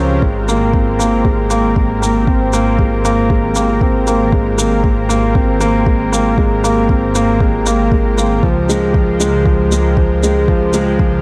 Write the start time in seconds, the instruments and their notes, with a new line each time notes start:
Already playing: detuned saw bass C#2, grand piano F3 G#3 C#4 F4, analog synth pad C4 F4 G4 A#4
0.22 detuned saw bass G#1, grand piano G#3, kick
0.48 grand piano A#3, shaker
0.73 grand piano C4, kick
0.99 grand piano A#3, shaker
1.25 grand piano G#3, kick
1.50 grand piano A#3, shaker
1.76 grand piano G#3, kick
2.02 grand piano A#3, shaker
2.27 grand piano C4, kick
2.53 grand piano A#3, shaker
2.79 grand piano G#3, kick
3.05 grand piano A#3, shaker
3.30 grand piano G#3, kick
3.55 grand piano A#3, shaker
3.81 grand piano C4, kick
4.07 grand piano A#3, shaker
4.32 grand piano G#3, kick
4.58 grand piano A#3, shaker
4.84 grand piano G#3, kick
5.09 grand piano A#3, shaker
5.35 grand piano C4, kick
5.61 grand piano A#3, shaker
5.86 grand piano G#3, kick
6.12 grand piano A#3, shaker
6.38 grand piano G#3, kick
6.64 grand piano A#3, shaker
6.89 grand piano C4, kick
7.15 grand piano A#3, shaker
7.40 grand piano G#3, kick
7.66 grand piano A#3, shaker
7.92 grand piano G#3, kick
8.18 grand piano A#3, shaker
8.43 detuned saw bass C#2, grand piano F3, analog synth pad G4, kick
8.66 grand piano G#3, analog synth pad F4, shaker
8.80 analog synth pad C5
8.94 grand piano F3, kick
9.20 grand piano G#3, shaker
9.46 grand piano F3, kick
9.72 grand piano G#3, shaker
9.97 grand piano F3, kick
10.23 grand piano G#3, shaker
10.48 grand piano F3, kick
10.73 grand piano G#3, shaker
10.99 grand piano F3, kick